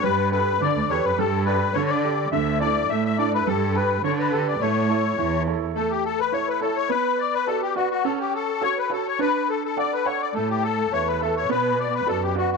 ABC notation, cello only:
X:1
M:4/4
L:1/8
Q:"Swing" 1/4=210
K:Amix
V:1 name="Cello" clef=bass
G,,4 D, D,, E,, F,, | G,,4 D,4 | D,,4 A,,4 | G,,4 D,4 |
A,,4 E,,4 | z8 | z8 | z8 |
z8 | A,,4 E,,4 | B,,4 F,,4 |]